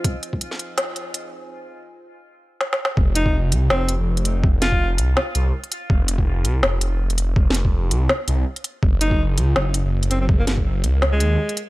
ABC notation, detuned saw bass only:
X:1
M:4/4
L:1/16
Q:"Swing 16ths" 1/4=164
K:Fphr
V:1 name="Detuned saw bass" clef=bass
z16 | z16 | F,,,6 C,,2 F,,,3 F,,,4- F,,,- | F,,,6 C,,2 z2 C,,2 z4 |
F,,,6 C,,2 F,,,3 F,,,4- F,,,- | F,,,6 C,,2 z2 C,,2 z4 | G,,,6 D,,2 G,,,3 G,,,4- G,,,- | G,,,6 D,,4 E,,2 z4 |]